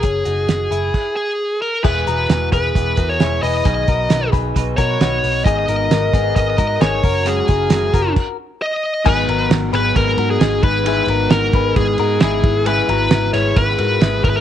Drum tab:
CC |----x---|x-------|--------|--------|
RD |--------|--------|--------|--------|
HH |xxxx----|-xxxxxxo|xxxxxxxo|xxxxxxxo|
SD |--o-----|--oo--o-|--o---o-|--o---o-|
BD |o---o---|o--ooo--|oo-ooo--|o--ooo-o|

CC |----x---|x-------|--------|--------|
RD |--------|-xxxxxxx|xxxxxxxx|xxxxxxxx|
HH |xxxx----|--------|--------|--------|
SD |--o-----|--oo--o-|--o---o-|--oo--o-|
BD |-o-oo---|o---o--o|---oo--o|----o--o|